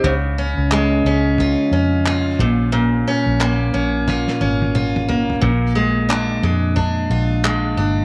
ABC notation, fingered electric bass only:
X:1
M:4/4
L:1/16
Q:"Swing 16ths" 1/4=89
K:Bbdor
V:1 name="Fingered electric bass" clef=bass
D,,3 D,,3 D,,3 z F,,4 B,,,2- | B,,,2 z B,,,3 B,,,3 z A,,,6 | B,,,6 F,,4 B,,,4 G,,,2 |]